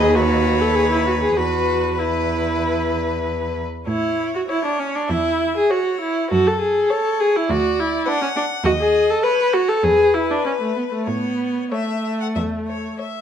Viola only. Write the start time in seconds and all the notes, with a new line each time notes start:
0.01 G#4
0.15 F#4
0.61 A4
0.75 G#4
0.91 E4
1.07 F#4
1.22 G#4
1.37 F#4
1.99 E4
3.88 E4
4.35 F#4
4.49 E4
4.65 D4
4.79 C#4
4.95 D4
5.10 E4
5.57 G#4
5.71 F#4
6.01 E4
6.31 F#4
6.47 A4
6.61 G#4
6.91 A4
7.20 G#4
7.36 E4
7.50 F#4
7.80 E4
8.08 D4
8.22 C#4
8.36 D4
8.65 F#4
8.80 G#4
9.10 A4
9.24 B4
9.54 F#4
9.69 A4
9.84 G#4
10.14 E4
10.31 D4
10.46 C#4
10.62 A3
10.76 B3
10.92 A3
11.07 B3
11.71 A3